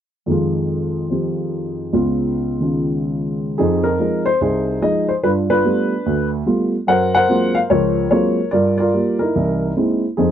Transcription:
upright piano
0.26 F2 D#3 G#3
0.31 F4
1.10 F3 C4 G4
1.93 C#2 C#3 B3 F4
2.60 D#3 C#4 F4
3.58 F2 C4 D#4 G#4
3.84 D#4 A#4
3.99 F3 G#3 D#4
4.26 C5
4.41 C2 D#4 G#4 C5
4.81 F3 G#3 D#4 D#5
5.09 C5
5.24 G2 D4 F4 B4
5.50 D4 F4 B4
5.65 G3 A3 B3 F4
6.06 D2
6.46 G3 A3 B3 F4
6.87 F#2 A#4 C5 F#5
7.15 A#4 C5 F#5
7.28 F#3 G#3 A#3 C4 F4
7.55 F5
7.70 C#2 F3 F4 A#4 C#5
8.11 F#3 G#3 A#3 C4 F4 A#4 C#5
8.51 G2 F4 A#4 D5
8.78 F4 A#4 D5
8.94 G3 A#3 F4
9.19 D#4 E4 A#4
9.35 C2 E3
9.77 G#3 A#3 C4 E4
10.17 F2 F3 C4 D#4 G#4

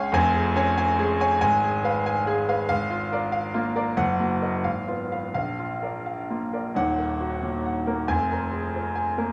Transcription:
grand piano
Already playing: C#2 G#3 C#4 G#4 C#5 F5 G#5
0.12 F1 F2 G#5
0.34 G#4
0.56 C#4 C#5 G#5
0.78 G#5
0.99 G#3 G#4
1.20 C#5 G#5
1.41 G#1 G#5
1.64 G#4
1.84 B4 F5
2.06 G#5
2.27 G#3 G#4
2.49 B4 F5
2.69 G#1 F5
2.90 F4
3.12 A#4 D5
3.32 F5
3.54 A#3 F4
3.76 A#4 D5
3.97 F#1 F#5
4.20 A#3 F#4
4.42 A#4 D#5
4.64 G#1 F5
4.88 B3 F4
5.12 B4 F5
5.34 A#1 F5
5.59 F4
5.83 A#4 D5
6.06 F5
6.30 A#3 F4
6.53 A#4 D5
6.75 D#1 D#2 F#5
6.98 A#4
7.21 F#4
7.43 A#2
7.65 F#5
7.87 A#3 A#4
8.07 F1 F2 G#5
8.32 A#4
8.53 G#4
8.75 F3
8.95 G#5
9.18 A#3 A#4

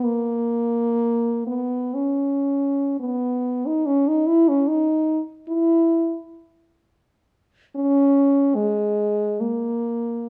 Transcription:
french horn
0.05 A#3
1.47 B3
1.94 C#4
3.00 B3
3.66 D#4
3.86 C#4
4.08 D#4
4.27 E4
4.49 C#4
4.68 D#4
5.49 E4
7.76 C#4
8.55 G#3
9.41 A#3

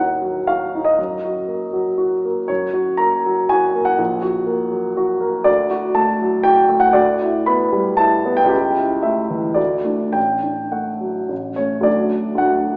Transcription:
grand piano
Already playing: D#2 D#4 F#4 A#4 F#5
0.22 F#3
0.47 F#4 F5
0.75 D#4
0.85 D#5
0.98 F#2
1.25 F#4
1.48 A#3
1.73 F#3
1.98 F#4
2.24 A#3
2.48 F#2 C#5
2.73 F#4
2.97 A#3 A#5
3.26 F#3
3.49 F#4 G#5
3.75 A#3
3.85 F#5
3.99 A#1
4.22 F#4
4.46 A#3
4.71 F#3
4.97 F#4
5.21 A#3
5.44 D2 D5
5.71 F#4
5.95 A3 A5
6.21 F#3
6.43 F#4 G5
6.69 A3
6.80 F#5
6.93 D2 D5
7.21 E4
7.46 B3 B5
7.73 G3
7.97 E4 A5
8.26 B3
8.37 G5
8.44 C#2
8.49 G4
8.78 E4
9.03 A3 E5
9.30 E3
9.54 D2 D5
9.84 A3 D4
10.13 A1 G5
10.43 D4
10.72 A3 F#5
11.01 F#3
11.29 A1
11.56 A3 C#4 C#5
11.80 D2 F#3 A3 D4 D5
12.35 D2 F#3 A3 D4 F#5

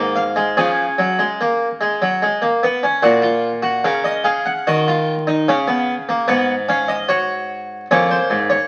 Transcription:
harpsichord
Already playing: G#2 A#3 F#4
0.16 F5
0.36 G#3
0.57 C#3 F3 G#4 G#5
0.98 F#3
1.19 G#3
1.41 A#3
1.81 G#3
2.02 F#3
2.22 G#3
2.42 A#3
2.63 B3
2.83 C#4
3.03 A#2 F#4 F#5
3.22 F4
3.62 F#4
3.84 C#3 A#4 F5
4.04 D#5
4.24 G#4 F5
4.45 F#5
4.67 D#3 F#4 D#5
4.88 F4
5.27 D#4
5.48 C#3 C#4 F5
5.68 B3
6.09 A#3
6.28 G#2 B3 F#5
6.69 C#4 F5
6.88 D#5
7.08 F#4 C#5
7.91 F2 A#3 C#4 C#5
8.10 C5
8.30 G#2
8.50 C#5

